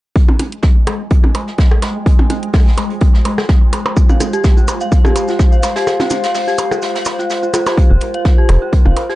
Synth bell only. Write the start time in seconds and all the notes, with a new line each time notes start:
4.10 F5
4.33 G4
4.57 F4
4.81 F5
5.05 G4
5.29 F4
5.52 F5
5.76 G4
6.00 F4
6.24 F5
6.48 G4
6.71 F4
6.95 F5
7.19 F4
7.43 F4
7.54 F4
7.67 G4
7.91 F4
8.14 F5
8.38 G4
8.62 F4
8.86 F5
9.09 G4